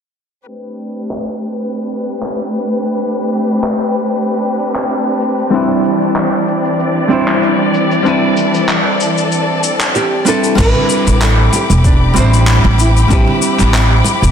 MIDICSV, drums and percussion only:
0, 0, Header, 1, 2, 480
1, 0, Start_track
1, 0, Key_signature, 0, "minor"
1, 0, Tempo, 631579
1, 363, Time_signature, 4, 2, 24, 8
1, 10879, End_track
2, 0, Start_track
2, 0, Title_t, "Drums"
2, 843, Note_on_c, 9, 39, 73
2, 919, Note_off_c, 9, 39, 0
2, 1562, Note_on_c, 9, 69, 66
2, 1638, Note_off_c, 9, 69, 0
2, 1692, Note_on_c, 9, 39, 68
2, 1768, Note_off_c, 9, 39, 0
2, 2044, Note_on_c, 9, 69, 69
2, 2120, Note_off_c, 9, 69, 0
2, 2172, Note_on_c, 9, 69, 34
2, 2248, Note_off_c, 9, 69, 0
2, 2284, Note_on_c, 9, 69, 28
2, 2360, Note_off_c, 9, 69, 0
2, 2522, Note_on_c, 9, 69, 68
2, 2598, Note_off_c, 9, 69, 0
2, 2656, Note_on_c, 9, 69, 37
2, 2732, Note_off_c, 9, 69, 0
2, 2764, Note_on_c, 9, 39, 74
2, 2764, Note_on_c, 9, 69, 33
2, 2840, Note_off_c, 9, 39, 0
2, 2840, Note_off_c, 9, 69, 0
2, 3006, Note_on_c, 9, 69, 69
2, 3082, Note_off_c, 9, 69, 0
2, 3137, Note_on_c, 9, 69, 39
2, 3213, Note_off_c, 9, 69, 0
2, 3246, Note_on_c, 9, 69, 29
2, 3322, Note_off_c, 9, 69, 0
2, 3488, Note_on_c, 9, 69, 62
2, 3564, Note_off_c, 9, 69, 0
2, 3614, Note_on_c, 9, 39, 72
2, 3615, Note_on_c, 9, 69, 44
2, 3690, Note_off_c, 9, 39, 0
2, 3691, Note_off_c, 9, 69, 0
2, 3721, Note_on_c, 9, 69, 32
2, 3797, Note_off_c, 9, 69, 0
2, 3960, Note_on_c, 9, 69, 68
2, 4036, Note_off_c, 9, 69, 0
2, 4090, Note_on_c, 9, 69, 39
2, 4166, Note_off_c, 9, 69, 0
2, 4200, Note_on_c, 9, 69, 30
2, 4276, Note_off_c, 9, 69, 0
2, 4441, Note_on_c, 9, 69, 67
2, 4517, Note_off_c, 9, 69, 0
2, 4571, Note_on_c, 9, 69, 37
2, 4647, Note_off_c, 9, 69, 0
2, 4680, Note_on_c, 9, 39, 76
2, 4680, Note_on_c, 9, 69, 32
2, 4756, Note_off_c, 9, 39, 0
2, 4756, Note_off_c, 9, 69, 0
2, 4923, Note_on_c, 9, 69, 71
2, 4999, Note_off_c, 9, 69, 0
2, 5052, Note_on_c, 9, 69, 44
2, 5128, Note_off_c, 9, 69, 0
2, 5165, Note_on_c, 9, 69, 33
2, 5241, Note_off_c, 9, 69, 0
2, 5402, Note_on_c, 9, 69, 71
2, 5478, Note_off_c, 9, 69, 0
2, 5533, Note_on_c, 9, 39, 70
2, 5533, Note_on_c, 9, 69, 44
2, 5609, Note_off_c, 9, 39, 0
2, 5609, Note_off_c, 9, 69, 0
2, 5648, Note_on_c, 9, 69, 35
2, 5724, Note_off_c, 9, 69, 0
2, 5884, Note_on_c, 9, 69, 72
2, 5960, Note_off_c, 9, 69, 0
2, 6015, Note_on_c, 9, 69, 42
2, 6091, Note_off_c, 9, 69, 0
2, 6124, Note_on_c, 9, 69, 32
2, 6200, Note_off_c, 9, 69, 0
2, 6360, Note_on_c, 9, 69, 73
2, 6436, Note_off_c, 9, 69, 0
2, 6492, Note_on_c, 9, 69, 42
2, 6568, Note_off_c, 9, 69, 0
2, 6602, Note_on_c, 9, 39, 74
2, 6602, Note_on_c, 9, 69, 35
2, 6678, Note_off_c, 9, 39, 0
2, 6678, Note_off_c, 9, 69, 0
2, 6843, Note_on_c, 9, 69, 75
2, 6919, Note_off_c, 9, 69, 0
2, 6974, Note_on_c, 9, 69, 43
2, 7050, Note_off_c, 9, 69, 0
2, 7082, Note_on_c, 9, 69, 33
2, 7158, Note_off_c, 9, 69, 0
2, 7322, Note_on_c, 9, 69, 70
2, 7398, Note_off_c, 9, 69, 0
2, 7453, Note_on_c, 9, 39, 73
2, 7453, Note_on_c, 9, 69, 42
2, 7529, Note_off_c, 9, 39, 0
2, 7529, Note_off_c, 9, 69, 0
2, 7563, Note_on_c, 9, 69, 35
2, 7639, Note_off_c, 9, 69, 0
2, 7801, Note_on_c, 9, 69, 70
2, 7877, Note_off_c, 9, 69, 0
2, 7931, Note_on_c, 9, 69, 40
2, 8007, Note_off_c, 9, 69, 0
2, 8040, Note_on_c, 9, 63, 74
2, 8041, Note_on_c, 9, 36, 112
2, 8043, Note_on_c, 9, 49, 89
2, 8043, Note_on_c, 9, 69, 31
2, 8116, Note_off_c, 9, 63, 0
2, 8117, Note_off_c, 9, 36, 0
2, 8119, Note_off_c, 9, 49, 0
2, 8119, Note_off_c, 9, 69, 0
2, 8172, Note_on_c, 9, 64, 71
2, 8248, Note_off_c, 9, 64, 0
2, 8281, Note_on_c, 9, 69, 73
2, 8357, Note_off_c, 9, 69, 0
2, 8414, Note_on_c, 9, 63, 53
2, 8414, Note_on_c, 9, 69, 41
2, 8490, Note_off_c, 9, 63, 0
2, 8490, Note_off_c, 9, 69, 0
2, 8523, Note_on_c, 9, 39, 101
2, 8524, Note_on_c, 9, 69, 32
2, 8599, Note_off_c, 9, 39, 0
2, 8600, Note_off_c, 9, 69, 0
2, 8761, Note_on_c, 9, 62, 67
2, 8765, Note_on_c, 9, 69, 74
2, 8837, Note_off_c, 9, 62, 0
2, 8841, Note_off_c, 9, 69, 0
2, 8891, Note_on_c, 9, 63, 87
2, 8893, Note_on_c, 9, 69, 40
2, 8967, Note_off_c, 9, 63, 0
2, 8969, Note_off_c, 9, 69, 0
2, 9001, Note_on_c, 9, 36, 104
2, 9001, Note_on_c, 9, 69, 32
2, 9077, Note_off_c, 9, 36, 0
2, 9077, Note_off_c, 9, 69, 0
2, 9242, Note_on_c, 9, 63, 64
2, 9244, Note_on_c, 9, 69, 66
2, 9318, Note_off_c, 9, 63, 0
2, 9320, Note_off_c, 9, 69, 0
2, 9373, Note_on_c, 9, 69, 41
2, 9449, Note_off_c, 9, 69, 0
2, 9480, Note_on_c, 9, 39, 104
2, 9480, Note_on_c, 9, 69, 31
2, 9556, Note_off_c, 9, 39, 0
2, 9556, Note_off_c, 9, 69, 0
2, 9608, Note_on_c, 9, 63, 77
2, 9613, Note_on_c, 9, 62, 61
2, 9684, Note_off_c, 9, 63, 0
2, 9689, Note_off_c, 9, 62, 0
2, 9715, Note_on_c, 9, 62, 45
2, 9723, Note_on_c, 9, 69, 72
2, 9791, Note_off_c, 9, 62, 0
2, 9799, Note_off_c, 9, 69, 0
2, 9854, Note_on_c, 9, 69, 36
2, 9930, Note_off_c, 9, 69, 0
2, 9958, Note_on_c, 9, 63, 80
2, 9961, Note_on_c, 9, 36, 115
2, 9961, Note_on_c, 9, 69, 32
2, 10034, Note_off_c, 9, 63, 0
2, 10037, Note_off_c, 9, 36, 0
2, 10037, Note_off_c, 9, 69, 0
2, 10090, Note_on_c, 9, 64, 82
2, 10166, Note_off_c, 9, 64, 0
2, 10199, Note_on_c, 9, 69, 76
2, 10275, Note_off_c, 9, 69, 0
2, 10325, Note_on_c, 9, 63, 68
2, 10331, Note_on_c, 9, 39, 29
2, 10331, Note_on_c, 9, 69, 40
2, 10401, Note_off_c, 9, 63, 0
2, 10407, Note_off_c, 9, 39, 0
2, 10407, Note_off_c, 9, 69, 0
2, 10443, Note_on_c, 9, 39, 104
2, 10443, Note_on_c, 9, 69, 35
2, 10519, Note_off_c, 9, 39, 0
2, 10519, Note_off_c, 9, 69, 0
2, 10674, Note_on_c, 9, 62, 60
2, 10682, Note_on_c, 9, 69, 76
2, 10750, Note_off_c, 9, 62, 0
2, 10758, Note_off_c, 9, 69, 0
2, 10816, Note_on_c, 9, 63, 88
2, 10817, Note_on_c, 9, 69, 42
2, 10879, Note_off_c, 9, 63, 0
2, 10879, Note_off_c, 9, 69, 0
2, 10879, End_track
0, 0, End_of_file